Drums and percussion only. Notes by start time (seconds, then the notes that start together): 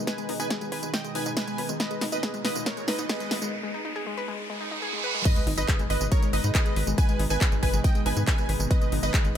0.07 kick, snare, closed hi-hat, tambourine
0.18 closed hi-hat, tambourine
0.29 open hi-hat
0.40 closed hi-hat, tambourine
0.50 kick, snare, closed hi-hat, tambourine
0.61 closed hi-hat, tambourine
0.72 kick, open hi-hat
0.83 closed hi-hat, tambourine
0.94 kick, snare, closed hi-hat, tambourine
1.04 closed hi-hat, tambourine
1.15 open hi-hat
1.26 closed hi-hat, tambourine
1.37 kick, snare, closed hi-hat, tambourine
1.48 closed hi-hat, tambourine
1.58 open hi-hat
1.69 closed hi-hat, tambourine
1.80 kick, snare, closed hi-hat, tambourine
1.91 closed hi-hat, tambourine
2.01 snare, open hi-hat
2.12 closed hi-hat, tambourine
2.23 kick, snare, closed hi-hat, tambourine
2.34 closed hi-hat, tambourine
2.45 snare, open hi-hat
2.55 closed hi-hat, tambourine
2.66 kick, snare, closed hi-hat, tambourine
2.77 closed hi-hat, tambourine
2.88 snare, open hi-hat
2.99 closed hi-hat, tambourine
3.09 kick, snare, closed hi-hat, tambourine
3.20 closed hi-hat, tambourine
3.31 snare, open hi-hat
3.42 closed hi-hat, tambourine
5.25 kick, closed hi-hat, crash, tambourine
5.36 closed hi-hat, tambourine
5.47 open hi-hat
5.58 closed hi-hat, tambourine
5.68 kick, clap, closed hi-hat, tambourine
5.79 closed hi-hat, tambourine
5.90 open hi-hat
6.01 closed hi-hat, tambourine
6.12 kick, closed hi-hat, tambourine
6.22 closed hi-hat, tambourine
6.33 open hi-hat
6.44 closed hi-hat, tambourine
6.55 kick, clap, closed hi-hat, tambourine
6.66 closed hi-hat, tambourine
6.76 open hi-hat
6.87 closed hi-hat, tambourine
6.98 kick, closed hi-hat, tambourine
7.09 closed hi-hat, tambourine
7.19 open hi-hat
7.30 tambourine
7.41 kick, clap, closed hi-hat, tambourine
7.52 closed hi-hat, tambourine
7.63 kick, open hi-hat
7.74 closed hi-hat, tambourine
7.84 kick, closed hi-hat, tambourine
7.95 closed hi-hat, tambourine
8.06 open hi-hat
8.17 closed hi-hat, tambourine
8.27 kick, clap, closed hi-hat, tambourine
8.38 closed hi-hat, tambourine
8.49 open hi-hat
8.60 closed hi-hat, tambourine
8.71 kick, closed hi-hat, tambourine
8.81 closed hi-hat, tambourine
8.92 open hi-hat
9.03 closed hi-hat, tambourine
9.14 kick, clap, closed hi-hat, tambourine
9.25 closed hi-hat, tambourine